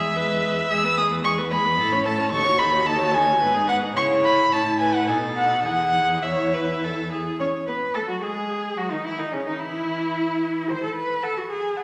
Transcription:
Already playing: cello E2, viola G#3, violin G#4 E5
0.16 viola G#3, violin B4
0.71 cello E2, viola G#3, violin G#4 E6
0.84 viola B3, violin B4
0.97 viola G#3, violin G#4 D#6
1.11 viola B3, violin B4
1.24 viola G#3, violin G#4 C#6
1.38 viola B3, violin B4
1.51 viola G#3, violin G#4 B5
1.65 viola B3, violin B4
1.78 cello A2, viola E4, violin A4
1.93 viola C#4, violin C#5
2.06 viola E4, violin A4 A5
2.18 viola C#4, violin C#5
2.31 cello D#2, viola D#4, violin A4 C#6
2.45 viola F#4, violin C#5
2.58 viola D#4, violin A4 B5
2.72 viola F#4, violin C#5
2.86 viola D#4, violin A4 A5
2.98 viola F#4, violin C#5
3.12 viola D#4, violin A4 G#5
3.26 viola F#4, violin C#5
3.40 cello G#2, viola B3, violin B4
3.55 viola D#4, violin G#4
3.67 viola B3, violin B4 F#5
3.81 viola D#4, violin G#4
3.95 cello C#3, viola E4, violin C#5 C#6
4.24 violin B5
4.51 cello A2, viola E4, violin C#5 A5
4.79 violin B4 G#5
4.94 violin F#5
5.07 cello B2, viola D#4, violin A4 G#5
5.36 violin F#5
5.65 cello E2, viola E4, violin G#4 F#5
6.24 viola E4, violin C#5 E5
6.54 violin B4
6.84 violin A4
7.12 violin G#4
7.39 viola C#4, violin C#5, cello C#5
7.67 viola B3, violin B4, cello B4
7.94 viola A3, violin A4, cello A4
8.08 viola F#3, violin F#4, cello F#4
8.22 viola G#3, violin G#4, cello G#4
8.77 viola F#3, cello F#4, violin F#4
8.90 viola D#3, violin D#4, cello D#4
9.04 viola E3, violin E4, cello E4
9.18 viola D#3, violin D#4, cello D#4
9.32 viola C#3, violin C#4, cello C#4
9.46 viola D#3, violin D#4, cello D#4
9.60 viola E3, violin E4, cello E4
10.69 viola D#3, cello C5
10.83 cello A4
10.96 cello B4
11.22 cello A4, violin F#5 A5
11.37 cello F#4
11.50 cello G#4
11.76 violin F#5 A5

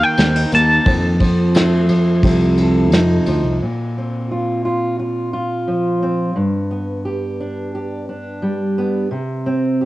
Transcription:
Already playing: steel-string acoustic guitar D#3 A#3
0.03 clean electric guitar G5
0.17 fingered electric bass D#2, steel-string acoustic guitar C4, snare, ride
0.36 steel-string acoustic guitar D#4
0.52 fingered electric bass D#2, steel-string acoustic guitar A#3, clean electric guitar A5, ride
0.86 fingered electric bass F2, steel-string acoustic guitar F2, kick, ride
1.20 steel-string acoustic guitar F3, kick, ride
1.54 steel-string acoustic guitar A3, snare, ride
1.89 steel-string acoustic guitar F3, ride
2.23 fingered electric bass C2, steel-string acoustic guitar C3, kick, ride
2.58 steel-string acoustic guitar A4, ride
2.92 fingered electric bass F2, steel-string acoustic guitar D#4, snare, ride
3.26 fingered electric bass D2, steel-string acoustic guitar F3, ride
3.44 fingered electric bass C2
3.62 steel-string acoustic guitar A#2
3.98 steel-string acoustic guitar C4
4.32 steel-string acoustic guitar F4
4.65 steel-string acoustic guitar F4
4.99 steel-string acoustic guitar F4
5.33 steel-string acoustic guitar F4
5.68 steel-string acoustic guitar F3
6.03 steel-string acoustic guitar C4
6.36 steel-string acoustic guitar G2
6.71 steel-string acoustic guitar B3
7.05 steel-string acoustic guitar G4
7.40 steel-string acoustic guitar D4
7.75 steel-string acoustic guitar G4
8.09 steel-string acoustic guitar D4
8.42 steel-string acoustic guitar G3
8.78 steel-string acoustic guitar B3
9.11 steel-string acoustic guitar C3
9.46 steel-string acoustic guitar C4
9.81 steel-string acoustic guitar G4

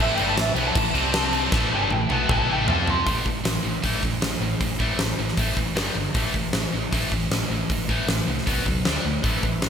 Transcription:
Already playing: tonewheel organ B4
0.00 fingered electric bass A1, distorted electric guitar A2 E3 A3, tonewheel organ A3 E4, lead electric guitar E5
0.14 fingered electric bass G1, distorted electric guitar G2 D3 G3, lead electric guitar G5, crash
0.26 lead electric guitar A5
0.36 fingered electric bass A1, distorted electric guitar A2 E3, lead electric guitar E5, snare, crash
0.52 fingered electric bass B1, distorted electric guitar B2, lead electric guitar G5
0.56 distorted electric guitar F#3 B3, crash
0.65 lead electric guitar A5
0.75 fingered electric bass A1, distorted electric guitar A2 E3, kick, crash
0.93 fingered electric bass C2, distorted electric guitar C3 G3 C4, tonewheel organ C4 G4 D5, crash
1.14 snare, crash
1.33 crash
1.50 fingered electric bass A1, distorted electric guitar A2 E3 A3, tonewheel organ A3 E4 B4, kick, snare
1.71 fingered electric bass G1, distorted electric guitar G2 D3 G3, lead electric guitar A5
1.90 fingered electric bass A1, distorted electric guitar A2 E3, lead electric guitar G5, high tom
2.09 fingered electric bass B1, distorted electric guitar B2 F#3 B3, lead electric guitar A5, high tom
2.29 fingered electric bass B1, distorted electric guitar B2 F#3 B3, lead electric guitar A5, kick, mid tom
2.47 fingered electric bass A1, distorted electric guitar A2 E3 A3, lead electric guitar G5
2.67 fingered electric bass F2, distorted electric guitar F3 C4 F4, tonewheel organ F3 C4 G4, lead electric guitar A5, floor tom
2.88 lead electric guitar C6, floor tom
3.06 fingered electric bass A1, distorted electric guitar A2 E3 A3, kick, open hi-hat
3.25 fingered electric bass A1, distorted electric guitar A2 E3, kick
3.44 fingered electric bass A1, distorted electric guitar A2 E3, snare, open hi-hat
3.64 fingered electric bass A1, distorted electric guitar A2 E3
3.83 fingered electric bass A1, distorted electric guitar A2 E3 A3, kick, open hi-hat
4.02 fingered electric bass A1, distorted electric guitar A2 E3, kick
4.21 fingered electric bass A1, distorted electric guitar A2 E3, snare, open hi-hat
4.40 fingered electric bass A1, distorted electric guitar A2 E3
4.60 fingered electric bass A1, distorted electric guitar A2 E3, kick, open hi-hat
4.79 fingered electric bass A1, distorted electric guitar A2 E3 A3, kick
4.98 fingered electric bass A1, distorted electric guitar A2 E3, snare, open hi-hat
5.18 fingered electric bass A1, distorted electric guitar A2 E3
5.28 snare
5.37 fingered electric bass A1, distorted electric guitar A2 E3 A3, kick, open hi-hat
5.55 fingered electric bass A1, distorted electric guitar A2 E3, kick
5.75 fingered electric bass G1, distorted electric guitar G2 D3 G3, snare, open hi-hat
5.95 fingered electric bass G1, distorted electric guitar G2 D3
6.14 fingered electric bass A1, distorted electric guitar A2 E3 A3, kick, open hi-hat
6.34 fingered electric bass A1, distorted electric guitar A2 E3, kick
6.53 fingered electric bass A1, distorted electric guitar A2 E3, snare, open hi-hat
6.72 fingered electric bass A1, distorted electric guitar A2 E3
6.91 fingered electric bass A1, distorted electric guitar A2 E3 A3, kick, open hi-hat
7.11 fingered electric bass A1, distorted electric guitar A2 E3, kick
7.30 fingered electric bass A1, distorted electric guitar A2 E3, snare, open hi-hat
7.49 fingered electric bass A1, distorted electric guitar A2 E3
7.69 fingered electric bass A1, distorted electric guitar A2 E3, kick, open hi-hat
7.88 fingered electric bass A1, distorted electric guitar A2 E3 A3, kick
8.07 fingered electric bass A1, distorted electric guitar A2 E3, snare, open hi-hat
8.27 fingered electric bass C2, distorted electric guitar A2 E3
8.38 snare
8.46 fingered electric bass B1, distorted electric guitar B2 F#3 B3, kick, open hi-hat
8.66 fingered electric bass C#2, distorted electric guitar B2 F#3, kick
8.85 fingered electric bass D2, distorted electric guitar D3 A3 D4, snare, open hi-hat
9.04 fingered electric bass D2, distorted electric guitar D3 A3
9.22 fingered electric bass A1, distorted electric guitar A2 E3 A3, tonewheel organ A3 E4 B4, kick, open hi-hat
9.43 fingered electric bass A1, distorted electric guitar A2 E3, kick
9.62 fingered electric bass A1, distorted electric guitar A2 E3, snare, open hi-hat

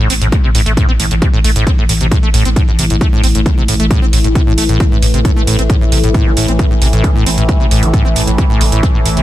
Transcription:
Already playing: synth drone A2 E3
0.10 sub bass A1, acid bass C4, open hi-hat
0.21 sub bass A1, acid bass A2, closed hi-hat
0.32 acid bass A2, kick, closed hi-hat
0.44 acid bass C3
0.55 sub bass A1, acid bass A2, open hi-hat
0.66 sub bass A1, acid bass A3, closed hi-hat
0.77 acid bass A2, kick, closed hi-hat
0.89 acid bass C4
0.99 sub bass A1, acid bass A2, open hi-hat
1.11 sub bass A1, acid bass A2, closed hi-hat
1.22 acid bass C3, kick, closed hi-hat
1.33 acid bass A2
1.44 sub bass A1, acid bass A3, open hi-hat
1.56 sub bass A1, acid bass A2, closed hi-hat
1.67 acid bass C4, kick, closed hi-hat
1.78 acid bass A2
1.89 sub bass A1, acid bass A2, open hi-hat
2.01 sub bass A1, acid bass C3, closed hi-hat
2.11 acid bass A2, kick, closed hi-hat
2.23 acid bass A3
2.34 sub bass A1, acid bass A2, open hi-hat
2.45 sub bass A1, acid bass C4, closed hi-hat
2.56 acid bass A2, kick, closed hi-hat
2.68 acid bass A2
2.79 sub bass A1, acid bass C3, open hi-hat
2.90 sub bass A1, acid bass A2, closed hi-hat
3.01 acid bass A3, kick, closed hi-hat
3.13 acid bass A2
3.23 sub bass A1, acid bass C4, open hi-hat
3.35 sub bass A1, acid bass A2, closed hi-hat
3.46 acid bass A2, kick, closed hi-hat
3.57 acid bass C3
3.68 sub bass A1, acid bass A2, open hi-hat
3.80 sub bass A1, acid bass A3, closed hi-hat
3.91 acid bass A2, kick, closed hi-hat
4.02 acid bass C4
4.13 sub bass A1, acid bass A2, open hi-hat
4.24 sub bass A1, acid bass A2, closed hi-hat
4.35 acid bass C3, kick, closed hi-hat
4.47 acid bass A2
4.58 sub bass A1, acid bass A3, open hi-hat
4.69 sub bass A1, acid bass A2, closed hi-hat
4.80 acid bass C4, kick, closed hi-hat
4.92 acid bass A2
5.02 sub bass A1, acid bass A2, open hi-hat
5.14 sub bass A1, acid bass C3, closed hi-hat
5.25 acid bass A2, kick, closed hi-hat
5.36 acid bass A3
5.47 sub bass A1, acid bass A2, open hi-hat
5.59 sub bass A1, acid bass C4, closed hi-hat
5.70 acid bass A2, kick, closed hi-hat
5.81 acid bass A2
5.92 sub bass A1, acid bass C3, open hi-hat
6.03 sub bass A1, acid bass A2, closed hi-hat
6.14 acid bass A2, kick, closed hi-hat
6.26 acid bass E3
6.37 sub bass A1, acid bass A2, open hi-hat
6.48 sub bass A1, acid bass C4, closed hi-hat
6.59 acid bass A2, kick, closed hi-hat
6.71 acid bass A2
6.82 sub bass A1, acid bass C3, open hi-hat
6.93 sub bass A1, acid bass A2, closed hi-hat
7.04 acid bass E3, kick, closed hi-hat
7.15 acid bass A2
7.26 sub bass A1, acid bass C4, open hi-hat
7.38 sub bass A1, acid bass A2, closed hi-hat
7.49 acid bass A2, kick, closed hi-hat
7.60 acid bass C3
7.71 sub bass A1, acid bass A2, open hi-hat
7.83 sub bass A1, acid bass E3, closed hi-hat
7.93 acid bass A2, kick, closed hi-hat
8.05 acid bass C4
8.16 sub bass A1, acid bass A2, open hi-hat
8.27 sub bass A1, acid bass A2, closed hi-hat
8.38 acid bass C3, kick, closed hi-hat
8.50 acid bass A2
8.61 sub bass A1, acid bass E3, open hi-hat
8.72 sub bass A1, acid bass A2, closed hi-hat
8.83 acid bass C4, kick, closed hi-hat
8.94 acid bass A2
9.05 sub bass A1, acid bass A2, open hi-hat
9.17 sub bass A1, acid bass C3, closed hi-hat

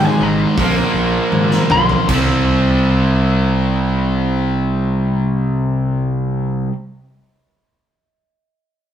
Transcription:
Already playing: distorted electric guitar G#2 D#3 G#3
0.05 lead electric guitar G#5
0.20 fingered electric bass G#1, distorted electric guitar G#2 D#3 G#3, lead electric guitar A#5
0.41 lead electric guitar C6
0.57 fingered electric bass A#1, distorted electric guitar A#2 F3 A#3, kick, open hi-hat
0.94 fingered electric bass A#1
1.32 fingered electric bass G#2, high tom
1.51 snare
1.69 fingered electric bass B1, distorted electric guitar A#2 F3 A#3, lead electric guitar C6, mid tom
1.89 floor tom
2.08 fingered electric bass C2, distorted electric guitar C3 G3 C4, kick, crash

